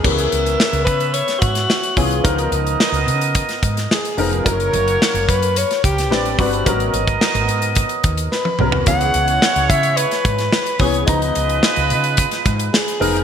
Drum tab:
CC |x---------------|----------------|----------------|----------------|
HH |-xxx-xxxxxxx-xox|xxxx-xxxxxxx-xox|xxxx-xxxxxxx-xox|xxxx-xxxxxxx----|
SD |----o----o-oo---|----o----o-oo---|----o----o-oo---|----o-------o---|
T1 |----------------|----------------|----------------|-------------o--|
T2 |----------------|----------------|----------------|--------------o-|
FT |----------------|----------------|----------------|---------------o|
BD |o-----o---o---o-|o-------o-o-----|o-----o---o---o-|o--o----o-o-----|

CC |----------------|----------------|
HH |xxxx-xxxxxxx-xox|xxxx-xxxxxxx-xox|
SD |----o----o-oo---|----o----o--o---|
T1 |----------------|----------------|
T2 |----------------|----------------|
FT |----------------|----------------|
BD |o-----o---o---o-|o-------o-o-----|